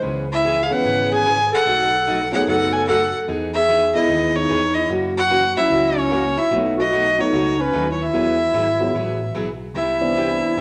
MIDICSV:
0, 0, Header, 1, 6, 480
1, 0, Start_track
1, 0, Key_signature, 4, "major"
1, 0, Tempo, 404858
1, 49, Time_signature, 4, 2, 24, 8
1, 12577, End_track
2, 0, Start_track
2, 0, Title_t, "Fiddle"
2, 0, Program_c, 0, 110
2, 382, Note_on_c, 0, 76, 107
2, 740, Note_on_c, 0, 77, 72
2, 758, Note_off_c, 0, 76, 0
2, 858, Note_on_c, 0, 78, 99
2, 875, Note_off_c, 0, 77, 0
2, 1328, Note_off_c, 0, 78, 0
2, 1343, Note_on_c, 0, 80, 118
2, 1778, Note_off_c, 0, 80, 0
2, 1828, Note_on_c, 0, 78, 116
2, 2726, Note_off_c, 0, 78, 0
2, 2762, Note_on_c, 0, 78, 90
2, 2920, Note_off_c, 0, 78, 0
2, 2941, Note_on_c, 0, 78, 92
2, 3236, Note_on_c, 0, 80, 100
2, 3253, Note_off_c, 0, 78, 0
2, 3396, Note_off_c, 0, 80, 0
2, 3403, Note_on_c, 0, 78, 94
2, 3774, Note_off_c, 0, 78, 0
2, 4194, Note_on_c, 0, 76, 106
2, 4643, Note_off_c, 0, 76, 0
2, 4684, Note_on_c, 0, 75, 98
2, 5170, Note_on_c, 0, 73, 103
2, 5188, Note_off_c, 0, 75, 0
2, 5618, Note_on_c, 0, 75, 91
2, 5636, Note_off_c, 0, 73, 0
2, 5800, Note_off_c, 0, 75, 0
2, 6131, Note_on_c, 0, 78, 120
2, 6572, Note_off_c, 0, 78, 0
2, 6601, Note_on_c, 0, 76, 100
2, 7085, Note_on_c, 0, 73, 94
2, 7103, Note_off_c, 0, 76, 0
2, 7562, Note_on_c, 0, 76, 99
2, 7579, Note_off_c, 0, 73, 0
2, 7732, Note_off_c, 0, 76, 0
2, 8061, Note_on_c, 0, 75, 99
2, 8540, Note_on_c, 0, 73, 88
2, 8558, Note_off_c, 0, 75, 0
2, 9022, Note_on_c, 0, 71, 93
2, 9039, Note_off_c, 0, 73, 0
2, 9378, Note_off_c, 0, 71, 0
2, 9385, Note_on_c, 0, 73, 61
2, 9499, Note_on_c, 0, 76, 91
2, 9517, Note_off_c, 0, 73, 0
2, 11099, Note_off_c, 0, 76, 0
2, 11560, Note_on_c, 0, 76, 93
2, 12565, Note_off_c, 0, 76, 0
2, 12577, End_track
3, 0, Start_track
3, 0, Title_t, "Clarinet"
3, 0, Program_c, 1, 71
3, 375, Note_on_c, 1, 64, 77
3, 752, Note_on_c, 1, 68, 58
3, 770, Note_off_c, 1, 64, 0
3, 867, Note_on_c, 1, 71, 88
3, 885, Note_off_c, 1, 68, 0
3, 1316, Note_off_c, 1, 71, 0
3, 1323, Note_on_c, 1, 68, 99
3, 1768, Note_off_c, 1, 68, 0
3, 1805, Note_on_c, 1, 69, 83
3, 2715, Note_off_c, 1, 69, 0
3, 2784, Note_on_c, 1, 68, 77
3, 2932, Note_off_c, 1, 68, 0
3, 2955, Note_on_c, 1, 69, 86
3, 3272, Note_off_c, 1, 69, 0
3, 3272, Note_on_c, 1, 69, 80
3, 3424, Note_off_c, 1, 69, 0
3, 3431, Note_on_c, 1, 69, 97
3, 3788, Note_off_c, 1, 69, 0
3, 4229, Note_on_c, 1, 68, 78
3, 4662, Note_off_c, 1, 68, 0
3, 4702, Note_on_c, 1, 64, 85
3, 5178, Note_on_c, 1, 63, 84
3, 5196, Note_off_c, 1, 64, 0
3, 5645, Note_on_c, 1, 64, 74
3, 5663, Note_off_c, 1, 63, 0
3, 5814, Note_off_c, 1, 64, 0
3, 6142, Note_on_c, 1, 66, 86
3, 6578, Note_off_c, 1, 66, 0
3, 6614, Note_on_c, 1, 64, 79
3, 7094, Note_on_c, 1, 61, 84
3, 7112, Note_off_c, 1, 64, 0
3, 7562, Note_on_c, 1, 64, 72
3, 7580, Note_off_c, 1, 61, 0
3, 7732, Note_off_c, 1, 64, 0
3, 8031, Note_on_c, 1, 66, 84
3, 8517, Note_on_c, 1, 63, 78
3, 8535, Note_off_c, 1, 66, 0
3, 9005, Note_on_c, 1, 61, 83
3, 9023, Note_off_c, 1, 63, 0
3, 9369, Note_off_c, 1, 61, 0
3, 9376, Note_on_c, 1, 64, 51
3, 9498, Note_off_c, 1, 64, 0
3, 9498, Note_on_c, 1, 64, 81
3, 11099, Note_off_c, 1, 64, 0
3, 11589, Note_on_c, 1, 64, 75
3, 12569, Note_off_c, 1, 64, 0
3, 12577, End_track
4, 0, Start_track
4, 0, Title_t, "Steel-string acoustic guitar"
4, 0, Program_c, 2, 25
4, 21, Note_on_c, 2, 49, 46
4, 23, Note_on_c, 2, 52, 51
4, 24, Note_on_c, 2, 59, 63
4, 31, Note_on_c, 2, 61, 54
4, 33, Note_on_c, 2, 68, 58
4, 294, Note_off_c, 2, 49, 0
4, 295, Note_off_c, 2, 52, 0
4, 295, Note_off_c, 2, 59, 0
4, 299, Note_off_c, 2, 61, 0
4, 300, Note_off_c, 2, 68, 0
4, 527, Note_on_c, 2, 49, 68
4, 530, Note_on_c, 2, 59, 75
4, 532, Note_on_c, 2, 52, 76
4, 532, Note_on_c, 2, 68, 81
4, 534, Note_on_c, 2, 61, 78
4, 666, Note_off_c, 2, 49, 0
4, 667, Note_off_c, 2, 59, 0
4, 668, Note_off_c, 2, 52, 0
4, 668, Note_off_c, 2, 68, 0
4, 669, Note_off_c, 2, 61, 0
4, 1013, Note_on_c, 2, 49, 56
4, 1017, Note_on_c, 2, 52, 52
4, 1021, Note_on_c, 2, 59, 63
4, 1024, Note_on_c, 2, 68, 58
4, 1025, Note_on_c, 2, 61, 55
4, 1271, Note_off_c, 2, 49, 0
4, 1272, Note_off_c, 2, 52, 0
4, 1275, Note_off_c, 2, 59, 0
4, 1276, Note_off_c, 2, 61, 0
4, 1276, Note_off_c, 2, 68, 0
4, 1486, Note_on_c, 2, 49, 72
4, 1487, Note_on_c, 2, 59, 69
4, 1489, Note_on_c, 2, 52, 76
4, 1497, Note_on_c, 2, 61, 76
4, 1499, Note_on_c, 2, 68, 87
4, 1625, Note_off_c, 2, 49, 0
4, 1625, Note_off_c, 2, 59, 0
4, 1627, Note_off_c, 2, 52, 0
4, 1630, Note_off_c, 2, 61, 0
4, 1632, Note_off_c, 2, 68, 0
4, 1966, Note_on_c, 2, 47, 54
4, 1970, Note_on_c, 2, 54, 54
4, 1972, Note_on_c, 2, 57, 60
4, 1976, Note_on_c, 2, 63, 61
4, 1980, Note_on_c, 2, 66, 56
4, 2227, Note_off_c, 2, 47, 0
4, 2229, Note_off_c, 2, 54, 0
4, 2230, Note_off_c, 2, 57, 0
4, 2232, Note_off_c, 2, 63, 0
4, 2234, Note_off_c, 2, 66, 0
4, 2455, Note_on_c, 2, 54, 72
4, 2459, Note_on_c, 2, 47, 79
4, 2460, Note_on_c, 2, 57, 65
4, 2462, Note_on_c, 2, 63, 81
4, 2469, Note_on_c, 2, 66, 78
4, 2590, Note_off_c, 2, 54, 0
4, 2592, Note_off_c, 2, 47, 0
4, 2592, Note_off_c, 2, 57, 0
4, 2593, Note_off_c, 2, 63, 0
4, 2597, Note_off_c, 2, 66, 0
4, 2929, Note_on_c, 2, 47, 49
4, 2933, Note_on_c, 2, 54, 57
4, 2940, Note_on_c, 2, 63, 58
4, 2941, Note_on_c, 2, 66, 60
4, 2942, Note_on_c, 2, 57, 55
4, 3189, Note_off_c, 2, 47, 0
4, 3191, Note_off_c, 2, 54, 0
4, 3194, Note_off_c, 2, 63, 0
4, 3195, Note_off_c, 2, 57, 0
4, 3195, Note_off_c, 2, 66, 0
4, 3415, Note_on_c, 2, 54, 71
4, 3416, Note_on_c, 2, 47, 74
4, 3416, Note_on_c, 2, 57, 78
4, 3424, Note_on_c, 2, 63, 72
4, 3424, Note_on_c, 2, 66, 75
4, 3550, Note_off_c, 2, 54, 0
4, 3550, Note_off_c, 2, 57, 0
4, 3551, Note_off_c, 2, 47, 0
4, 3555, Note_off_c, 2, 63, 0
4, 3555, Note_off_c, 2, 66, 0
4, 3889, Note_on_c, 2, 52, 55
4, 3891, Note_on_c, 2, 59, 49
4, 3893, Note_on_c, 2, 63, 59
4, 3900, Note_on_c, 2, 68, 59
4, 4149, Note_off_c, 2, 52, 0
4, 4150, Note_off_c, 2, 59, 0
4, 4151, Note_off_c, 2, 63, 0
4, 4154, Note_off_c, 2, 68, 0
4, 4364, Note_on_c, 2, 52, 68
4, 4372, Note_on_c, 2, 63, 75
4, 4375, Note_on_c, 2, 59, 77
4, 4381, Note_on_c, 2, 68, 76
4, 4504, Note_off_c, 2, 52, 0
4, 4509, Note_off_c, 2, 63, 0
4, 4510, Note_off_c, 2, 59, 0
4, 4513, Note_off_c, 2, 68, 0
4, 4843, Note_on_c, 2, 52, 54
4, 4846, Note_on_c, 2, 59, 53
4, 4850, Note_on_c, 2, 68, 64
4, 4853, Note_on_c, 2, 63, 60
4, 5106, Note_off_c, 2, 52, 0
4, 5107, Note_off_c, 2, 59, 0
4, 5109, Note_off_c, 2, 68, 0
4, 5111, Note_off_c, 2, 63, 0
4, 5321, Note_on_c, 2, 52, 79
4, 5323, Note_on_c, 2, 59, 78
4, 5325, Note_on_c, 2, 63, 75
4, 5333, Note_on_c, 2, 68, 81
4, 5463, Note_off_c, 2, 52, 0
4, 5464, Note_off_c, 2, 59, 0
4, 5465, Note_off_c, 2, 63, 0
4, 5469, Note_off_c, 2, 68, 0
4, 5796, Note_on_c, 2, 52, 46
4, 5803, Note_on_c, 2, 49, 53
4, 5808, Note_on_c, 2, 58, 59
4, 5809, Note_on_c, 2, 61, 52
4, 5815, Note_on_c, 2, 66, 59
4, 6062, Note_off_c, 2, 52, 0
4, 6066, Note_off_c, 2, 49, 0
4, 6068, Note_off_c, 2, 58, 0
4, 6069, Note_off_c, 2, 61, 0
4, 6072, Note_off_c, 2, 66, 0
4, 6273, Note_on_c, 2, 49, 63
4, 6281, Note_on_c, 2, 52, 73
4, 6282, Note_on_c, 2, 58, 77
4, 6284, Note_on_c, 2, 66, 74
4, 6286, Note_on_c, 2, 61, 78
4, 6419, Note_off_c, 2, 49, 0
4, 6423, Note_off_c, 2, 52, 0
4, 6423, Note_off_c, 2, 58, 0
4, 6424, Note_off_c, 2, 66, 0
4, 6425, Note_off_c, 2, 61, 0
4, 6752, Note_on_c, 2, 49, 54
4, 6758, Note_on_c, 2, 52, 61
4, 6759, Note_on_c, 2, 58, 54
4, 6767, Note_on_c, 2, 61, 61
4, 6768, Note_on_c, 2, 66, 60
4, 7020, Note_off_c, 2, 49, 0
4, 7023, Note_off_c, 2, 52, 0
4, 7024, Note_off_c, 2, 58, 0
4, 7028, Note_off_c, 2, 61, 0
4, 7028, Note_off_c, 2, 66, 0
4, 7237, Note_on_c, 2, 49, 70
4, 7239, Note_on_c, 2, 52, 78
4, 7241, Note_on_c, 2, 58, 84
4, 7245, Note_on_c, 2, 61, 75
4, 7252, Note_on_c, 2, 66, 88
4, 7381, Note_off_c, 2, 49, 0
4, 7382, Note_off_c, 2, 52, 0
4, 7383, Note_off_c, 2, 58, 0
4, 7385, Note_off_c, 2, 61, 0
4, 7388, Note_off_c, 2, 66, 0
4, 7719, Note_on_c, 2, 54, 58
4, 7720, Note_on_c, 2, 47, 57
4, 7722, Note_on_c, 2, 57, 61
4, 7726, Note_on_c, 2, 63, 55
4, 7727, Note_on_c, 2, 66, 51
4, 7984, Note_off_c, 2, 47, 0
4, 7984, Note_off_c, 2, 54, 0
4, 7985, Note_off_c, 2, 57, 0
4, 7987, Note_off_c, 2, 63, 0
4, 7988, Note_off_c, 2, 66, 0
4, 8203, Note_on_c, 2, 47, 66
4, 8211, Note_on_c, 2, 54, 81
4, 8216, Note_on_c, 2, 57, 76
4, 8216, Note_on_c, 2, 63, 79
4, 8220, Note_on_c, 2, 66, 80
4, 8344, Note_off_c, 2, 47, 0
4, 8348, Note_off_c, 2, 54, 0
4, 8350, Note_off_c, 2, 57, 0
4, 8350, Note_off_c, 2, 63, 0
4, 8352, Note_off_c, 2, 66, 0
4, 8679, Note_on_c, 2, 47, 60
4, 8681, Note_on_c, 2, 54, 61
4, 8686, Note_on_c, 2, 57, 62
4, 8686, Note_on_c, 2, 63, 61
4, 8692, Note_on_c, 2, 66, 60
4, 8943, Note_off_c, 2, 47, 0
4, 8944, Note_off_c, 2, 54, 0
4, 8947, Note_off_c, 2, 57, 0
4, 8947, Note_off_c, 2, 63, 0
4, 8950, Note_off_c, 2, 66, 0
4, 9164, Note_on_c, 2, 47, 80
4, 9166, Note_on_c, 2, 54, 85
4, 9171, Note_on_c, 2, 57, 73
4, 9171, Note_on_c, 2, 63, 82
4, 9177, Note_on_c, 2, 66, 85
4, 9304, Note_off_c, 2, 47, 0
4, 9305, Note_off_c, 2, 54, 0
4, 9307, Note_off_c, 2, 57, 0
4, 9307, Note_off_c, 2, 63, 0
4, 9311, Note_off_c, 2, 66, 0
4, 9647, Note_on_c, 2, 52, 53
4, 9649, Note_on_c, 2, 54, 56
4, 9655, Note_on_c, 2, 59, 64
4, 9656, Note_on_c, 2, 68, 58
4, 9659, Note_on_c, 2, 64, 57
4, 9907, Note_off_c, 2, 52, 0
4, 9908, Note_off_c, 2, 54, 0
4, 9911, Note_off_c, 2, 59, 0
4, 9912, Note_off_c, 2, 68, 0
4, 9913, Note_off_c, 2, 64, 0
4, 10120, Note_on_c, 2, 52, 69
4, 10124, Note_on_c, 2, 54, 73
4, 10124, Note_on_c, 2, 59, 73
4, 10128, Note_on_c, 2, 68, 75
4, 10129, Note_on_c, 2, 64, 75
4, 10262, Note_off_c, 2, 52, 0
4, 10264, Note_off_c, 2, 54, 0
4, 10264, Note_off_c, 2, 59, 0
4, 10266, Note_off_c, 2, 64, 0
4, 10266, Note_off_c, 2, 68, 0
4, 10606, Note_on_c, 2, 52, 54
4, 10611, Note_on_c, 2, 54, 56
4, 10613, Note_on_c, 2, 59, 55
4, 10620, Note_on_c, 2, 68, 64
4, 10621, Note_on_c, 2, 64, 58
4, 10866, Note_off_c, 2, 52, 0
4, 10869, Note_off_c, 2, 54, 0
4, 10870, Note_off_c, 2, 59, 0
4, 10874, Note_off_c, 2, 64, 0
4, 10874, Note_off_c, 2, 68, 0
4, 11079, Note_on_c, 2, 54, 73
4, 11080, Note_on_c, 2, 52, 66
4, 11084, Note_on_c, 2, 59, 83
4, 11087, Note_on_c, 2, 68, 82
4, 11088, Note_on_c, 2, 64, 78
4, 11221, Note_off_c, 2, 52, 0
4, 11221, Note_off_c, 2, 54, 0
4, 11224, Note_off_c, 2, 59, 0
4, 11225, Note_off_c, 2, 68, 0
4, 11226, Note_off_c, 2, 64, 0
4, 11567, Note_on_c, 2, 55, 56
4, 11568, Note_on_c, 2, 59, 56
4, 11569, Note_on_c, 2, 48, 53
4, 11573, Note_on_c, 2, 64, 63
4, 11573, Note_on_c, 2, 67, 54
4, 11827, Note_off_c, 2, 55, 0
4, 11827, Note_off_c, 2, 59, 0
4, 11828, Note_off_c, 2, 48, 0
4, 11830, Note_off_c, 2, 64, 0
4, 11830, Note_off_c, 2, 67, 0
4, 12052, Note_on_c, 2, 48, 68
4, 12055, Note_on_c, 2, 55, 68
4, 12063, Note_on_c, 2, 59, 78
4, 12067, Note_on_c, 2, 64, 74
4, 12070, Note_on_c, 2, 67, 75
4, 12187, Note_off_c, 2, 48, 0
4, 12189, Note_off_c, 2, 55, 0
4, 12193, Note_off_c, 2, 59, 0
4, 12195, Note_off_c, 2, 64, 0
4, 12197, Note_off_c, 2, 67, 0
4, 12537, Note_on_c, 2, 48, 62
4, 12538, Note_on_c, 2, 55, 55
4, 12577, Note_off_c, 2, 48, 0
4, 12577, Note_off_c, 2, 55, 0
4, 12577, End_track
5, 0, Start_track
5, 0, Title_t, "Upright piano"
5, 0, Program_c, 3, 0
5, 828, Note_on_c, 3, 52, 73
5, 828, Note_on_c, 3, 56, 57
5, 831, Note_on_c, 3, 59, 62
5, 832, Note_on_c, 3, 61, 73
5, 1450, Note_off_c, 3, 56, 0
5, 1451, Note_off_c, 3, 52, 0
5, 1452, Note_off_c, 3, 59, 0
5, 1452, Note_off_c, 3, 61, 0
5, 2750, Note_on_c, 3, 54, 83
5, 2753, Note_on_c, 3, 57, 66
5, 2755, Note_on_c, 3, 59, 70
5, 2757, Note_on_c, 3, 63, 87
5, 3372, Note_off_c, 3, 54, 0
5, 3373, Note_off_c, 3, 57, 0
5, 3374, Note_off_c, 3, 59, 0
5, 3375, Note_off_c, 3, 63, 0
5, 4672, Note_on_c, 3, 64, 75
5, 4674, Note_on_c, 3, 56, 72
5, 4676, Note_on_c, 3, 59, 75
5, 4679, Note_on_c, 3, 75, 92
5, 5293, Note_off_c, 3, 64, 0
5, 5294, Note_off_c, 3, 56, 0
5, 5295, Note_off_c, 3, 59, 0
5, 5297, Note_off_c, 3, 75, 0
5, 6594, Note_on_c, 3, 54, 75
5, 6597, Note_on_c, 3, 58, 66
5, 6601, Note_on_c, 3, 64, 75
5, 6602, Note_on_c, 3, 61, 70
5, 7214, Note_off_c, 3, 54, 0
5, 7215, Note_off_c, 3, 58, 0
5, 7217, Note_off_c, 3, 64, 0
5, 7218, Note_off_c, 3, 61, 0
5, 7721, Note_on_c, 3, 54, 70
5, 7724, Note_on_c, 3, 59, 64
5, 7725, Note_on_c, 3, 57, 67
5, 7728, Note_on_c, 3, 63, 82
5, 8004, Note_off_c, 3, 54, 0
5, 8005, Note_off_c, 3, 59, 0
5, 8006, Note_off_c, 3, 57, 0
5, 8007, Note_off_c, 3, 63, 0
5, 8512, Note_on_c, 3, 54, 75
5, 8516, Note_on_c, 3, 57, 68
5, 8518, Note_on_c, 3, 59, 68
5, 8522, Note_on_c, 3, 66, 83
5, 8670, Note_off_c, 3, 54, 0
5, 8672, Note_off_c, 3, 57, 0
5, 8673, Note_off_c, 3, 59, 0
5, 8675, Note_off_c, 3, 66, 0
5, 9643, Note_on_c, 3, 54, 64
5, 9649, Note_on_c, 3, 59, 57
5, 9650, Note_on_c, 3, 56, 56
5, 9656, Note_on_c, 3, 64, 65
5, 9924, Note_off_c, 3, 54, 0
5, 9927, Note_off_c, 3, 59, 0
5, 9928, Note_off_c, 3, 56, 0
5, 9930, Note_off_c, 3, 64, 0
5, 10432, Note_on_c, 3, 54, 67
5, 10433, Note_on_c, 3, 56, 67
5, 10439, Note_on_c, 3, 59, 67
5, 10441, Note_on_c, 3, 66, 80
5, 10589, Note_off_c, 3, 54, 0
5, 10590, Note_off_c, 3, 56, 0
5, 10593, Note_off_c, 3, 59, 0
5, 10593, Note_off_c, 3, 66, 0
5, 11864, Note_on_c, 3, 52, 76
5, 11865, Note_on_c, 3, 55, 73
5, 11865, Note_on_c, 3, 59, 74
5, 11868, Note_on_c, 3, 60, 72
5, 11871, Note_on_c, 3, 62, 88
5, 12487, Note_off_c, 3, 52, 0
5, 12488, Note_off_c, 3, 55, 0
5, 12488, Note_off_c, 3, 59, 0
5, 12489, Note_off_c, 3, 60, 0
5, 12491, Note_off_c, 3, 62, 0
5, 12577, End_track
6, 0, Start_track
6, 0, Title_t, "Picked electric bass"
6, 0, Program_c, 4, 34
6, 42, Note_on_c, 4, 37, 81
6, 813, Note_off_c, 4, 37, 0
6, 1006, Note_on_c, 4, 32, 87
6, 1776, Note_off_c, 4, 32, 0
6, 1964, Note_on_c, 4, 35, 86
6, 2735, Note_off_c, 4, 35, 0
6, 2930, Note_on_c, 4, 30, 83
6, 3698, Note_off_c, 4, 30, 0
6, 3886, Note_on_c, 4, 40, 75
6, 4656, Note_off_c, 4, 40, 0
6, 4847, Note_on_c, 4, 39, 86
6, 5256, Note_off_c, 4, 39, 0
6, 5327, Note_on_c, 4, 40, 75
6, 5737, Note_off_c, 4, 40, 0
6, 5801, Note_on_c, 4, 42, 90
6, 6573, Note_off_c, 4, 42, 0
6, 6760, Note_on_c, 4, 37, 96
6, 7532, Note_off_c, 4, 37, 0
6, 7720, Note_on_c, 4, 35, 92
6, 8492, Note_off_c, 4, 35, 0
6, 8686, Note_on_c, 4, 37, 97
6, 9096, Note_off_c, 4, 37, 0
6, 9167, Note_on_c, 4, 39, 83
6, 9576, Note_off_c, 4, 39, 0
6, 9644, Note_on_c, 4, 40, 80
6, 10030, Note_off_c, 4, 40, 0
6, 10120, Note_on_c, 4, 32, 79
6, 10532, Note_off_c, 4, 32, 0
6, 10607, Note_on_c, 4, 33, 91
6, 11016, Note_off_c, 4, 33, 0
6, 11082, Note_on_c, 4, 35, 72
6, 11493, Note_off_c, 4, 35, 0
6, 11551, Note_on_c, 4, 36, 89
6, 12326, Note_off_c, 4, 36, 0
6, 12530, Note_on_c, 4, 31, 82
6, 12577, Note_off_c, 4, 31, 0
6, 12577, End_track
0, 0, End_of_file